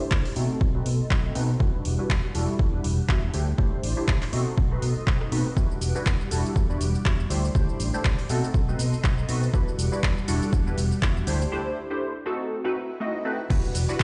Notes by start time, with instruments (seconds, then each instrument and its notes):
Already playing: string machine G4 D5 C6
0.00 analog polysynth A3 D4 E4 G4 C5, muted fingered electric bass stroke
0.11 fingered electric bass D2, kick, clap
0.25 open hi-hat
0.36 fingered electric bass B2, analog polysynth A3 C4 D#4 F#4 A4, string machine A4 D#5, open hi-hat
0.61 fingered electric bass B1, kick
0.74 analog polysynth A3 C4 D#4 F#4 B4
0.86 fingered electric bass B2, open hi-hat
1.00 muted fingered electric bass stroke
1.10 fingered electric bass B1, analog polysynth A3 C4 D#4 F#4 D#5, kick, clap
1.35 fingered electric bass B2, analog polysynth A3 C4 D#4 F#4 B4, open hi-hat
1.59 fingered electric bass E2, analog polysynth G3 D4 E4 F#4 B4, string machine G3 F#5 D6, kick
1.85 fingered electric bass E1, open hi-hat
1.98 analog polysynth G3 D4 E4 F#4 B4, muted fingered electric bass stroke
2.10 fingered electric bass E2, kick, clap
2.34 fingered electric bass E1, analog polysynth G3 D4 E4 F#4 A4, open hi-hat
2.59 fingered electric bass E2, kick
2.73 analog polysynth G3 D4 E4 F#4 B4
2.84 fingered electric bass E1, open hi-hat
2.99 muted fingered electric bass stroke
3.08 fingered electric bass E2, analog polysynth G3 D4 E4 F#4 E5, kick, clap
3.33 fingered electric bass D2, analog polysynth A3 D4 E4 G4 C5, string machine D5 C6, open hi-hat
3.58 fingered electric bass D2, analog polysynth A3 D4 E4 G4 C5, kick
3.83 fingered electric bass A1, open hi-hat
3.97 analog polysynth A3 D4 E4 G4 C5, muted fingered electric bass stroke
4.08 fingered electric bass D2, kick, clap
4.22 clap, open hi-hat
4.32 fingered electric bass B2, analog polysynth A3 C4 D#4 F#4 A4, string machine A4 D#5, open hi-hat
4.57 fingered electric bass B1, kick
4.71 analog polysynth A3 C4 D#4 F#4 B4
4.82 fingered electric bass B2, open hi-hat
4.96 muted fingered electric bass stroke
5.06 fingered electric bass B1, analog polysynth A3 C4 D#4 F#4 D#5, kick, clap
5.21 cross-stick
5.31 fingered electric bass B2, analog polysynth A3 C4 D#4 F#4 B4, open hi-hat
5.56 fingered electric bass E2, analog polysynth G3 D4 E4 F#4 B4, string machine G3 F#5 D6, kick, shaker
5.71 shaker
5.81 fingered electric bass E1, open hi-hat, shaker
5.95 analog polysynth G3 D4 E4 F#4 B4, muted fingered electric bass stroke, shaker
6.06 fingered electric bass E2, kick, clap, shaker
6.21 shaker
6.31 fingered electric bass E1, analog polysynth G3 D4 E4 F#4 A4, open hi-hat, shaker
6.46 shaker
6.56 fingered electric bass E2, kick, shaker
6.69 analog polysynth G3 D4 E4 F#4 B4, shaker
6.81 fingered electric bass E1, open hi-hat, shaker
6.95 muted fingered electric bass stroke, shaker
7.05 fingered electric bass E2, analog polysynth G3 D4 E4 F#4 E5, kick, clap, shaker
7.20 shaker
7.30 fingered electric bass D2, analog polysynth A3 D4 E4 G4 C5, string machine D5 C6, open hi-hat, shaker
7.45 shaker
7.55 fingered electric bass D2, analog polysynth A3 D4 E4 G4 C5, kick, shaker
7.69 shaker
7.80 fingered electric bass A1, open hi-hat, shaker
7.94 analog polysynth A3 D4 E4 G4 C5, muted fingered electric bass stroke, shaker
8.05 fingered electric bass D2, kick, clap, shaker
8.19 open hi-hat, shaker
8.29 fingered electric bass B2, analog polysynth A3 C4 D#4 F#4 A4, string machine A4 D#5, open hi-hat, shaker
8.44 shaker
8.54 fingered electric bass B1, kick, shaker
8.68 analog polysynth A3 C4 D#4 F#4 B4, shaker
8.79 fingered electric bass B2, open hi-hat, shaker
8.93 muted fingered electric bass stroke, shaker
9.04 fingered electric bass B1, analog polysynth A3 C4 D#4 F#4 D#5, kick, clap, shaker
9.18 shaker
9.28 fingered electric bass B2, analog polysynth A3 C4 D#4 F#4 B4, open hi-hat, shaker
9.43 shaker
9.53 fingered electric bass E2, string machine G3 F#5 D6, analog polysynth G3 D4 E4 F#4 B4, kick, shaker
9.68 shaker
9.78 fingered electric bass E1, open hi-hat, shaker
9.92 analog polysynth G3 D4 E4 F#4 B4, muted fingered electric bass stroke, shaker
10.03 fingered electric bass E2, kick, clap, shaker
10.18 shaker
10.27 fingered electric bass E1, analog polysynth G3 D4 E4 F#4 A4, open hi-hat, shaker
10.42 shaker
10.53 fingered electric bass E2, kick, shaker
10.67 analog polysynth G3 D4 E4 F#4 B4, shaker
10.78 fingered electric bass E1, open hi-hat, shaker
10.92 muted fingered electric bass stroke, shaker
11.02 fingered electric bass E2, analog polysynth G3 D4 E4 F#4 E5, kick, clap, shaker
11.17 shaker
11.27 fingered electric bass D2, analog polysynth A3 D4 E4 G4 C5, string machine G4 D5 C6, open hi-hat, shaker
11.41 shaker
11.52 analog polysynth A3 D4 E4 G4 C5
11.90 analog polysynth A3 D4 E4 G4 C5
12.26 analog polysynth A3 C4 D#4 F#4 A4
12.51 swell
12.64 analog polysynth A3 C4 D#4 F#4 B4
13.00 analog polysynth A3 C4 D#4 F#4 D#5
13.25 analog polysynth A3 C4 D#4 F#4 B4
13.50 fingered electric bass E2, analog polysynth G3 D4 E4 F#4 B4, string machine F#4 D5, kick, crash, impact, shaker
13.65 shaker
13.75 fingered electric bass E1, open hi-hat, shaker
13.89 analog polysynth G3 D4 E4 F#4 B4, muted fingered electric bass stroke, shaker
14.00 fingered electric bass E2, kick, clap, shaker